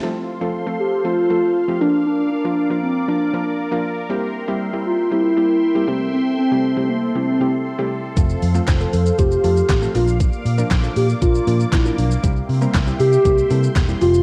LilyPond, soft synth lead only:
\new Staff \with { instrumentName = "Soft synth lead" } { \time 4/4 \key f \major \tempo 4 = 118 r4. g'8 f'4. d'8 | d'8 d'4 c'8 d'4. r8 | r4. f'8 e'4. c'8 | c'8 c'4 bes8 c'4. r8 |
r4. a'8 g'4. f'8 | r4. g'8 f'4 e'8 d'8 | r4. g'4. r8 f'8 | }